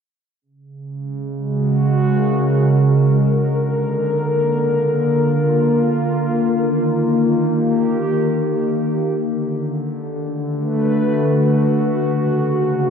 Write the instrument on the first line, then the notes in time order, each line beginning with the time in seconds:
ambient pad
0.42 C#3
0.84 G#3
1.27 F#4
1.58 A#4
3.33 D3
3.79 A#3
4.61 F4
6.22 D#3
7.40 G4
9.11 D3
10.15 A3
10.43 F#4 B4
12.01 C#3
12.57 G#3